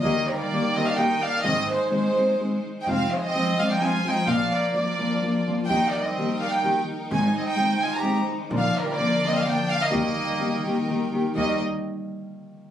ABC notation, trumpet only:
X:1
M:3/4
L:1/16
Q:"Swing" 1/4=127
K:Eb
V:1 name="Trumpet"
B,2 G, B,3 C D E2 D2 | C2 A,2 A,6 z3/2 E/2 | C2 A, C3 D E F2 E2 | D2 B,2 B,6 z2 |
E2 B, C3 D E2 z3 | E2 C E3 F G2 z3 | D2 G, B,3 C D D2 D B,- | B,8 z4 |
B,2 z8 z2 |]